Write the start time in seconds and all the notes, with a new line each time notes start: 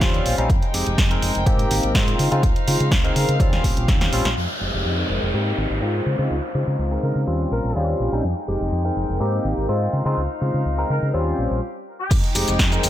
Already playing: G4 C5 F5
0.01 D#2 G3 C4 C#4 F4, kick, snare, closed hi-hat
0.14 closed hi-hat
0.26 A#1, open hi-hat
0.38 A#1 G3 C4 C#4 D#4, closed hi-hat
0.50 F2 G#3 D#4 G5, kick, closed hi-hat
0.62 closed hi-hat
0.74 F1 G#3 C4 D#4 G4, open hi-hat
0.87 F1, closed hi-hat
0.98 F2, kick, snare, closed hi-hat
1.10 G#3 C4 D#4 A#4, closed hi-hat
1.22 F1, open hi-hat
1.35 F1, closed hi-hat
1.46 A#3 C4 D#4 G4 A#4, kick, closed hi-hat
1.59 closed hi-hat
1.71 G#1, open hi-hat
1.83 G#1, closed hi-hat
1.95 G#3 C4 D#4 F4, kick, snare, closed hi-hat
2.08 closed hi-hat
2.19 C#3 D#4 C5 F5, open hi-hat
2.31 C#3 G#3 C4 D#4 F4, closed hi-hat
2.43 C#2, kick, closed hi-hat
2.56 closed hi-hat
2.67 C#3 G#3 C4 D#4 F4, open hi-hat
2.80 C#3, closed hi-hat
2.91 C#2, kick, snare, closed hi-hat
3.04 G#3 C4 D#4 A#4, closed hi-hat
3.16 C#3, open hi-hat
3.29 C#3, closed hi-hat
3.39 D#2 G3 C4 C#4 F4 G4, kick, closed hi-hat
3.53 snare, closed hi-hat
3.64 A#1, kick, open hi-hat
3.77 A#1, closed hi-hat
3.88 G3 C4 C#4 D#4, kick, snare, closed hi-hat
4.01 snare, closed hi-hat
4.12 A#1 G3 C4 C#4 F4, open hi-hat
4.25 A#1, snare, closed hi-hat
4.36 F2 G#3 D#4 G5, downlifter
4.60 F1 G#3 C4 D#4 G4
4.74 F1
4.85 F2
4.97 G#3 C4 D#4 A#4
5.10 F1
5.22 F1
5.33 G#2 A#3 C4 D#4 G4 A#4
5.58 G#1
5.70 G#1
5.82 G#2 G#3 C4 D#4 F4
6.06 C#3 D#4 C5 F5
6.18 C#3 G#3 C4 D#4 F4
6.30 C#2
6.54 C#3 G#3 C4 D#4 F4
6.67 C#3
6.79 C#2
6.91 G#3 C4 D#4 A#4
7.03 C#3 A#4
7.15 C#3
7.27 D#2 G3 C4 C#4 F4 G4
7.51 A#1 A#4
7.64 A#1
7.75 D#2 G3 C4 C#4 F4
8.00 A#1
8.12 A#1 G3 C4 C#4 D#4
8.24 F2 G#3 D#4 G5
8.48 F1 G#3 C4 D#4 G4
8.61 F1
8.72 F2
8.84 G#3 C4 D#4 A#4
8.96 F1
9.09 F1
9.20 G#2 A#3 C4 D#4 G4 A#4
9.45 G#1
9.57 G#1
9.68 G#2 G#3 C4 D#4 F4
9.93 C#3 D#4 C5 F5
10.05 C#3 G#3 C4 D#4 F4
10.17 C#2
10.41 C#3 G#3 C4 D#4 F4
10.54 C#3
10.66 C#2
10.78 G#3 C4 D#4 A#4
10.90 C#3 A#4
11.02 C#3
11.13 D#2 G3 C4 C#4 F4 G4
11.38 A#1
11.51 A#1
11.99 G4
12.10 F2 G#3 D#4 G5, kick, closed hi-hat, crash, shaker
12.24 closed hi-hat
12.35 F1 G#3 C4 D#4 G4, open hi-hat, shaker
12.48 F1, closed hi-hat, shaker
12.59 F2, kick, snare, closed hi-hat, shaker
12.72 G#3 C4 D#4 A#4, closed hi-hat, shaker
12.83 F1, open hi-hat, shaker